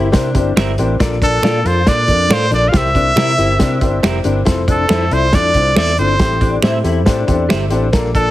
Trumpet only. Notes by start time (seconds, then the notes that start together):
1.23 A4
1.67 C5
1.88 D5
2.33 C5
2.54 D5
2.69 F5
2.77 E5
4.71 A4
5.13 C5
5.35 D5
5.78 D5
5.99 C5
8.15 A4